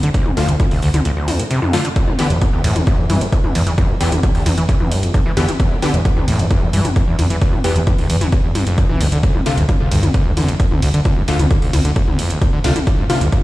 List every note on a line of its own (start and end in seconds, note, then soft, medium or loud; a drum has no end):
0.03 0.10 D2 medium
0.03 0.09 D3 medium
0.03 closed hi-hat medium
0.14 0.27 D2 loud
0.14 kick loud
0.14 closed hi-hat medium
0.26 0.32 A2 loud
0.26 mid tom medium
0.37 0.50 D2 loud
0.37 0.46 D3 medium
0.37 0.46 A3 medium
0.37 0.46 F4 medium
0.37 open hi-hat loud
0.49 0.55 C2 medium
0.49 0.56 D2 loud
0.49 closed hi-hat medium
0.60 0.66 D2 medium
0.60 kick loud
0.60 closed hi-hat medium
0.60 mid tom medium
0.71 0.78 C2 medium
0.71 0.80 D2 medium
0.71 open hi-hat medium
0.82 0.89 D2 loud
0.82 0.90 D2 medium
0.82 open hi-hat loud
0.94 1.01 D2 medium
0.94 1.00 D3 medium
0.94 closed hi-hat medium
0.94 mid tom medium
1.05 1.12 D2 loud
1.05 closed hi-hat medium
1.17 1.29 D2 medium
1.28 1.41 F2 medium
1.28 open hi-hat loud
1.28 mid tom medium
1.39 1.43 D3 medium
1.39 closed hi-hat medium
1.51 1.60 C3 loud
1.51 closed hi-hat medium
1.62 1.75 F2 medium
1.62 mid tom medium
1.73 1.77 G2 medium
1.73 1.82 D3 loud
1.73 1.82 A3 medium
1.73 1.82 F4 loud
1.73 open hi-hat loud
1.85 1.89 D3 medium
1.85 closed hi-hat medium
1.96 2.09 E2 medium
1.96 kick loud
1.96 closed hi-hat medium
2.08 2.14 B2 loud
2.08 mid tom medium
2.19 2.32 D3 medium
2.19 2.27 E3 loud
2.19 2.27 B3 medium
2.19 2.27 G4 loud
2.19 open hi-hat loud
2.19 ride medium
2.30 2.37 E2 loud
2.30 2.36 G2 loud
2.30 closed hi-hat medium
2.41 2.48 F2 medium
2.41 kick loud
2.41 closed hi-hat medium
2.41 mid tom medium
2.53 2.60 D2 medium
2.53 2.62 E2 medium
2.64 2.72 E2 medium
2.64 2.77 A2 loud
2.64 open hi-hat loud
2.64 ride medium
2.76 2.83 E2 medium
2.76 2.82 E2 loud
2.76 closed hi-hat medium
2.76 mid tom medium
2.87 3.00 E2 loud
2.87 kick loud
2.87 closed hi-hat medium
2.99 3.06 E2 medium
2.99 3.05 B2 loud
3.10 3.17 G2 medium
3.10 3.23 E3 medium
3.10 open hi-hat loud
3.10 mid tom medium
3.10 ride medium
3.21 3.27 D2 medium
3.21 closed hi-hat medium
3.32 3.39 F2 medium
3.32 kick loud
3.32 closed hi-hat medium
3.44 3.53 E2 medium
3.44 3.51 E2 medium
3.44 mid tom medium
3.55 3.62 E2 loud
3.55 3.63 E2 loud
3.55 open hi-hat loud
3.55 ride medium
3.67 3.74 E2 medium
3.67 3.73 E3 medium
3.67 closed hi-hat medium
3.78 3.91 E2 loud
3.78 kick loud
3.78 closed hi-hat medium
3.78 mid tom medium
3.89 3.96 B2 loud
4.01 4.14 E2 loud
4.01 4.09 E3 medium
4.01 4.09 B3 medium
4.01 4.09 G4 medium
4.01 open hi-hat loud
4.01 ride medium
4.12 4.18 D2 medium
4.12 4.19 E2 loud
4.12 closed hi-hat medium
4.12 mid tom medium
4.23 4.30 E2 medium
4.23 kick loud
4.23 closed hi-hat medium
4.35 4.42 D2 medium
4.35 4.44 E2 medium
4.35 open hi-hat medium
4.46 4.52 E2 loud
4.46 4.53 E2 medium
4.46 open hi-hat loud
4.46 mid tom medium
4.46 ride medium
4.57 4.65 E2 medium
4.57 4.64 E3 medium
4.57 closed hi-hat medium
4.69 4.75 E2 loud
4.69 kick loud
4.69 closed hi-hat medium
4.80 4.93 E2 medium
4.80 4.87 E2 medium
4.80 mid tom medium
4.91 5.04 G2 loud
4.91 open hi-hat loud
4.91 ride medium
5.03 5.12 E2 medium
5.03 closed hi-hat medium
5.14 5.21 E2 loud
5.14 kick loud
5.14 closed hi-hat medium
5.14 mid tom medium
5.26 5.32 E3 loud
5.37 5.44 E2 loud
5.37 5.46 D3 medium
5.37 5.46 E3 loud
5.37 5.46 B3 medium
5.37 5.46 G4 loud
5.37 open hi-hat loud
5.37 ride medium
5.48 5.52 E3 medium
5.48 closed hi-hat medium
5.48 mid tom medium
5.60 5.73 E2 medium
5.60 kick loud
5.60 closed hi-hat medium
5.71 5.77 B2 loud
5.82 5.96 D3 medium
5.82 5.91 E3 loud
5.82 5.91 B3 medium
5.82 5.91 G4 loud
5.82 open hi-hat loud
5.82 mid tom medium
5.82 ride medium
5.94 6.01 E2 loud
5.94 6.00 G2 loud
5.94 closed hi-hat medium
6.05 6.12 F2 medium
6.05 kick loud
6.05 closed hi-hat medium
6.17 6.24 D2 medium
6.17 6.26 E2 medium
6.17 mid tom medium
6.28 6.35 E2 medium
6.28 6.41 A2 loud
6.28 open hi-hat loud
6.28 ride medium
6.39 6.46 E2 loud
6.39 6.47 E2 medium
6.39 closed hi-hat medium
6.50 6.64 E2 loud
6.50 kick loud
6.50 closed hi-hat medium
6.50 mid tom medium
6.62 6.69 E2 medium
6.62 6.68 B2 loud
6.73 6.81 G2 medium
6.73 6.86 E3 medium
6.73 open hi-hat loud
6.73 ride medium
6.85 6.91 D2 medium
6.85 closed hi-hat medium
6.85 mid tom medium
6.96 7.02 F2 medium
6.96 kick loud
6.96 closed hi-hat medium
7.08 7.17 E2 medium
7.08 7.15 E2 medium
7.19 7.25 E2 loud
7.19 7.26 E2 loud
7.19 open hi-hat loud
7.19 mid tom medium
7.19 ride medium
7.30 7.37 E2 medium
7.30 7.36 E3 medium
7.30 closed hi-hat medium
7.41 7.54 E2 loud
7.41 kick loud
7.41 closed hi-hat medium
7.53 7.59 B2 loud
7.53 mid tom medium
7.64 7.77 E2 loud
7.64 7.73 E3 medium
7.64 7.73 B3 medium
7.64 7.73 G4 medium
7.64 open hi-hat loud
7.64 ride medium
7.76 7.82 D2 medium
7.76 7.83 E2 loud
7.76 closed hi-hat medium
7.87 7.93 E2 medium
7.87 kick loud
7.87 closed hi-hat medium
7.87 mid tom medium
7.98 8.06 D2 medium
7.98 8.08 E2 medium
7.98 open hi-hat medium
8.10 8.16 E2 loud
8.10 8.17 E2 medium
8.10 open hi-hat loud
8.10 ride medium
8.21 8.28 E2 medium
8.21 8.27 E3 medium
8.21 closed hi-hat medium
8.21 mid tom medium
8.32 8.39 E2 loud
8.32 kick loud
8.32 closed hi-hat medium
8.44 8.51 E2 medium
8.44 8.48 E2 medium
8.55 8.65 G2 medium
8.55 open hi-hat loud
8.55 mid tom medium
8.55 ride medium
8.67 8.79 F2 medium
8.67 closed hi-hat medium
8.78 8.87 E2 loud
8.78 kick loud
8.78 closed hi-hat medium
8.89 8.97 B1 medium
8.89 9.02 E3 medium
8.89 mid tom medium
9.01 9.08 D2 loud
9.01 9.07 E2 medium
9.01 open hi-hat loud
9.01 ride medium
9.12 9.26 D2 medium
9.12 9.18 D3 medium
9.12 closed hi-hat medium
9.23 9.36 D2 medium
9.23 kick loud
9.23 closed hi-hat medium
9.35 9.41 A2 loud
9.35 mid tom medium
9.46 9.59 C3 medium
9.46 9.55 D3 loud
9.46 9.55 A3 medium
9.46 9.55 F4 loud
9.46 open hi-hat loud
9.46 ride medium
9.58 9.65 D2 loud
9.58 9.64 F2 loud
9.58 closed hi-hat medium
9.69 9.75 E2 medium
9.69 kick loud
9.69 closed hi-hat medium
9.69 mid tom medium
9.80 9.87 C2 medium
9.80 9.90 D2 medium
9.91 9.99 D2 medium
9.91 10.05 G2 loud
9.91 open hi-hat loud
9.91 ride medium
10.03 10.09 D2 loud
10.03 10.10 D2 medium
10.03 closed hi-hat medium
10.03 mid tom medium
10.14 10.27 D2 loud
10.14 kick loud
10.14 closed hi-hat medium
10.26 10.33 D2 medium
10.26 10.32 A2 loud
10.37 10.44 E2 medium
10.37 10.50 D3 medium
10.37 open hi-hat loud
10.37 mid tom medium
10.37 ride medium
10.49 10.55 C2 medium
10.49 closed hi-hat medium
10.60 10.66 E2 medium
10.60 kick loud
10.60 closed hi-hat medium
10.71 10.80 D2 medium
10.71 10.78 D2 medium
10.71 mid tom medium
10.82 10.89 D2 loud
10.82 10.90 D2 loud
10.82 open hi-hat loud
10.82 ride medium
10.94 11.01 D2 medium
10.94 11.00 D3 medium
10.94 closed hi-hat medium
11.05 11.18 D2 loud
11.05 kick loud
11.05 closed hi-hat medium
11.05 mid tom medium
11.17 11.23 A2 loud
11.28 11.41 D2 loud
11.28 11.36 D3 medium
11.28 11.36 A3 medium
11.28 11.36 F4 medium
11.28 open hi-hat loud
11.28 ride medium
11.39 11.46 C2 medium
11.39 11.47 D2 loud
11.39 closed hi-hat medium
11.39 mid tom medium
11.51 11.57 D2 medium
11.51 kick loud
11.51 closed hi-hat medium
11.62 11.69 C2 medium
11.62 11.71 D2 medium
11.62 open hi-hat medium
11.73 11.80 D2 loud
11.73 11.81 D2 medium
11.73 open hi-hat loud
11.73 mid tom medium
11.73 ride medium
11.85 11.92 D2 medium
11.85 11.91 D3 medium
11.85 closed hi-hat medium
11.96 12.02 D2 loud
11.96 kick loud
11.96 closed hi-hat medium
12.08 12.20 D2 medium
12.08 12.15 D2 medium
12.08 mid tom medium
12.19 12.32 F2 loud
12.19 open hi-hat loud
12.19 ride medium
12.30 12.40 D2 medium
12.30 closed hi-hat medium
12.41 12.48 D2 loud
12.41 kick loud
12.41 closed hi-hat medium
12.41 mid tom medium
12.53 12.59 D3 loud
12.64 12.72 D2 loud
12.64 12.74 C3 medium
12.64 12.73 D3 loud
12.64 12.73 A3 medium
12.64 12.73 F4 loud
12.64 open hi-hat loud
12.64 ride medium
12.76 12.79 D3 medium
12.76 closed hi-hat medium
12.76 mid tom medium
12.87 13.00 D2 medium
12.87 kick loud
12.87 closed hi-hat medium
12.98 13.05 A2 loud
13.10 13.23 C3 medium
13.10 13.18 D3 loud
13.10 13.18 A3 medium
13.10 13.18 F4 loud
13.10 open hi-hat loud
13.10 mid tom medium
13.10 ride medium
13.21 13.28 D2 loud
13.21 13.27 F2 loud
13.21 closed hi-hat medium
13.32 13.39 E2 medium
13.32 kick loud
13.32 closed hi-hat medium